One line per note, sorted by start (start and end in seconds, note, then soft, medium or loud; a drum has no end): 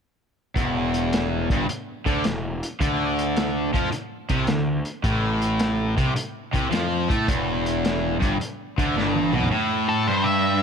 0.56 1.46 E1 medium
0.56 1.49 E2 medium
0.56 kick medium
0.56 closed hi-hat medium
0.94 closed hi-hat medium
1.13 snare loud
1.13 closed hi-hat medium
1.50 1.67 G1 medium
1.50 1.69 G2 medium
1.50 kick medium
1.50 closed hi-hat medium
1.68 muted picked electric bass stroke soft
1.68 muted overdriven electric guitar stroke medium
1.68 closed hi-hat medium
2.06 2.23 D2 medium
2.06 2.24 D3 medium
2.06 kick medium
2.06 closed hi-hat medium
2.24 2.60 E1 medium
2.24 2.55 E2 medium
2.24 snare medium
2.24 closed hi-hat medium
2.63 closed hi-hat medium
2.80 3.70 D2 medium
2.80 3.73 D3 medium
2.80 kick medium
2.80 closed hi-hat medium
3.19 closed hi-hat medium
3.37 snare loud
3.37 closed hi-hat medium
3.73 3.91 F2 medium
3.73 3.92 F3 medium
3.73 kick medium
3.73 closed hi-hat medium
3.85 snare soft
3.92 muted overdriven electric guitar stroke medium
3.92 muted picked electric bass stroke soft
3.92 closed hi-hat medium
4.29 4.47 C2 medium
4.29 4.48 C3 medium
4.29 kick medium
4.29 closed hi-hat soft
4.47 4.83 D2 medium
4.47 4.79 D3 medium
4.47 snare medium
4.47 closed hi-hat medium
4.85 closed hi-hat soft
5.04 5.94 A1 medium
5.04 5.97 A2 medium
5.04 kick medium
5.04 closed hi-hat medium
5.42 closed hi-hat soft
5.60 snare loud
5.60 closed hi-hat medium
5.97 6.15 C2 medium
5.97 6.15 C3 medium
5.97 kick medium
5.97 closed hi-hat medium
6.15 muted picked electric bass stroke soft
6.15 muted overdriven electric guitar stroke medium
6.15 closed hi-hat medium
6.53 6.71 C2 medium
6.53 6.70 C3 medium
6.53 kick medium
6.53 closed hi-hat medium
6.71 7.07 F2 medium
6.71 7.08 F3 medium
6.71 snare medium
6.71 closed hi-hat medium
7.08 7.27 A2 medium
7.08 7.27 A3 medium
7.08 kick medium
7.08 closed hi-hat medium
7.27 8.17 E1 medium
7.27 8.20 E2 medium
7.27 kick medium
7.27 closed hi-hat medium
7.66 closed hi-hat medium
7.85 snare loud
7.85 closed hi-hat medium
8.20 8.39 G1 medium
8.20 8.38 G2 medium
8.20 kick medium
8.20 closed hi-hat medium
8.40 muted picked electric bass stroke soft
8.40 muted overdriven electric guitar stroke medium
8.40 closed hi-hat medium
8.78 8.94 D2 medium
8.78 8.95 D3 medium
8.78 kick medium
8.78 closed hi-hat medium
8.95 9.31 G1 medium
8.95 9.32 G2 medium
8.95 snare soft
9.15 high tom medium
9.33 9.50 B1 medium
9.33 9.50 B2 medium
9.33 mid tom medium
9.43 floor tom medium
9.51 10.06 A2 medium
9.89 10.06 A4 medium
10.07 10.62 G2 loud
10.07 10.25 C5 medium
10.24 10.63 E5 medium